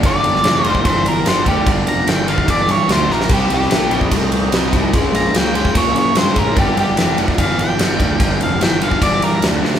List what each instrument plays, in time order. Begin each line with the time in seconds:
0.03 picked electric bass G1, overdriven electric guitar G2 D3, tonewheel organ D4 G4 A#4 F5, lead electric guitar D5, kick, ride
0.24 picked electric bass G1, ride
0.35 snare
0.44 picked electric bass F1, overdriven electric guitar G2 E3, snare, ride
0.64 picked electric bass F1, overdriven electric guitar G2 D3, lead electric guitar C5, ride
0.75 kick
0.84 picked electric bass G1, overdriven electric guitar G2 E3, lead electric guitar C5, kick, ride
1.05 picked electric bass G1, lead electric guitar A#4, ride
1.25 picked electric bass G1, overdriven electric guitar G2 D3, lead electric guitar C5, snare, ride
1.46 picked electric bass D2, overdriven electric guitar G2 D3, lead electric guitar G4, kick, ride
1.66 picked electric bass G1, overdriven electric guitar G2 D3, kick, ride
1.87 picked electric bass F1, lead electric guitar A#5, ride
2.07 picked electric bass G1, overdriven electric guitar G2 E3, lead electric guitar G5, snare, ride
2.28 overdriven electric guitar G2 D3, lead electric guitar F5, ride
2.38 kick
2.47 picked electric bass G1, overdriven electric guitar G2 E3, lead electric guitar D5, kick, ride
2.68 picked electric bass G2, lead electric guitar C#5, ride
2.88 picked electric bass D2, overdriven electric guitar G2 D3, snare, ride
2.92 lead electric guitar C5
3.09 picked electric bass A#1, overdriven electric guitar G2 D3, lead electric guitar A#4, snare
3.21 snare
3.29 picked electric bass C2, overdriven electric guitar C3 G3, tonewheel organ C4 D#4 G4 A#5, kick, crash, ride
3.33 lead electric guitar G4
3.50 picked electric bass C2, ride
3.54 lead electric guitar G4
3.61 snare
3.70 picked electric bass A#1, overdriven electric guitar C3 A3, snare, ride
3.91 picked electric bass A#1, overdriven electric guitar C3 G3, ride
4.01 kick
4.11 picked electric bass C2, overdriven electric guitar C3 A3, kick, ride
4.31 picked electric bass C2, ride
4.51 picked electric bass C2, overdriven electric guitar C3 G3, snare, ride
4.73 picked electric bass C2, overdriven electric guitar C3 G3, kick, ride
4.93 picked electric bass C#2, overdriven electric guitar C#3 G#3, tonewheel organ C#4 E4 G4 A#4, kick, ride
5.13 picked electric bass A#1, lead electric guitar A#5, ride
5.34 picked electric bass C#2, overdriven electric guitar C#3 A#3, lead electric guitar G5, snare, ride
5.54 overdriven electric guitar C#3 G#3, lead electric guitar G5, ride
5.65 kick, snare
5.74 picked electric bass C#2, overdriven electric guitar C#3 A#3, lead electric guitar C#5, kick, ride
5.94 picked electric bass C#3, ride
5.98 lead electric guitar C#5
6.15 picked electric bass G2, overdriven electric guitar C#3 G#3, lead electric guitar C5, snare, ride
6.35 picked electric bass A1, overdriven electric guitar C#3 G#3, lead electric guitar A#4, kick, ride
6.55 picked electric bass G1, overdriven electric guitar G2 D3, tonewheel organ D4 G4 A#4 F5, lead electric guitar G4, kick, ride
6.76 picked electric bass G1, lead electric guitar G4, ride
6.96 picked electric bass F1, overdriven electric guitar G2 E3, snare, ride
7.17 picked electric bass F1, overdriven electric guitar G2 D3, ride
7.28 kick, snare
7.38 picked electric bass G1, overdriven electric guitar G2 E3, lead electric guitar F5, kick, ride
7.57 picked electric bass G1, lead electric guitar G5, ride
7.78 picked electric bass G1, overdriven electric guitar G2 D3, snare, ride
7.99 picked electric bass D2, overdriven electric guitar G2 D3, kick, ride
8.20 picked electric bass G1, overdriven electric guitar G2 D3, kick, ride
8.40 picked electric bass F1, lead electric guitar F5, ride
8.61 picked electric bass G1, overdriven electric guitar G2 E3, lead electric guitar G5, snare, ride
8.81 overdriven electric guitar G2 D3, lead electric guitar F5, ride
8.91 kick
9.02 picked electric bass G1, overdriven electric guitar G2 E3, lead electric guitar D5, kick, ride
9.22 picked electric bass G2, lead electric guitar A#4, ride
9.42 picked electric bass D2, overdriven electric guitar G2 D3, snare, ride
9.62 picked electric bass D2, overdriven electric guitar G2 D3, snare
9.74 snare